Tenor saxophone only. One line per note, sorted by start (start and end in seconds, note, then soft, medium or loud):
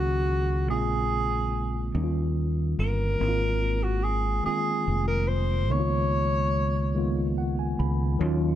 0.00 0.69 F#4 loud
0.70 1.91 G#4 medium
2.80 3.85 A#4 medium
3.83 4.05 F#4 medium
4.03 4.45 G#4 medium
4.46 5.03 G#4 loud
5.07 5.29 A#4 medium
5.28 5.73 C5 medium
5.71 7.37 C#5 loud